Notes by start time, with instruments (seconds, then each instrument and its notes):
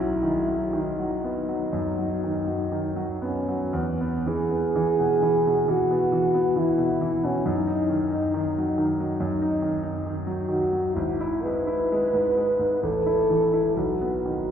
Already playing: grand piano B1 F#3, french horn E4
0.23 grand piano D#3
0.48 grand piano F#3
0.73 grand piano D#3
0.80 french horn D#4
1.00 grand piano F#3
1.24 grand piano B3
1.49 grand piano F#3
1.73 grand piano F#2
1.98 grand piano F#3
2.24 grand piano D#3
2.47 grand piano F#3
2.72 grand piano D#3
2.96 grand piano F#3
3.22 grand piano B3, french horn C#4
3.48 grand piano F#3
3.73 grand piano E2, french horn B3
4.01 grand piano B3
4.27 grand piano E3, french horn G#4
4.50 grand piano B3
4.76 grand piano E3
4.99 grand piano B2
5.22 grand piano E3
5.46 grand piano B2
5.68 grand piano E3, french horn F#4
5.91 grand piano B3
6.12 grand piano E3
6.34 grand piano B3
6.56 grand piano E3, french horn E4
6.78 grand piano B2
7.01 grand piano E3
7.24 grand piano B2, french horn C#4
7.46 grand piano F#2, french horn D#4
7.67 grand piano D#4
7.90 grand piano D#3
8.12 grand piano D#4
8.34 grand piano D#3
8.58 grand piano F#3
8.78 grand piano D#3
9.00 grand piano F#3
9.20 grand piano F#2
9.42 grand piano D#4
9.62 grand piano D#3
9.83 grand piano D#4
10.06 grand piano D#3
10.27 grand piano F#3
10.48 grand piano D#3, french horn F#4
10.73 grand piano F#3
10.94 grand piano G#1, french horn E4
11.21 grand piano E4
11.43 grand piano G#3, french horn B4
11.67 grand piano E4
11.92 grand piano G#3
12.14 grand piano G#2
12.37 grand piano G#3
12.59 grand piano G#2
12.83 grand piano A1, french horn A4
13.06 grand piano E4
13.30 grand piano E3
13.53 grand piano E4
13.75 grand piano B1, french horn F#4
14.01 grand piano B3
14.26 grand piano D#3